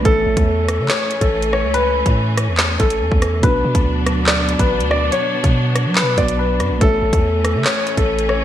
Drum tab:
HH |x--x--x-x-xx-x--|x--x--x-x-xx--x-|x--x--x-x-xx-x--|x--x--x-x-xx--x-|
CP |--------x-------|--------x-------|--------x-------|--------x-------|
SD |------r-o-----r-|------r-o-----r-|------r-o-----r-|------r-o-----r-|
BD |o--o-------o----|---o------o--o--|o--o-------o----|---o------o-----|

HH |x--x--x-x-xx-x--|
CP |--------x-------|
SD |------r-o-----r-|
BD |o--o-------o----|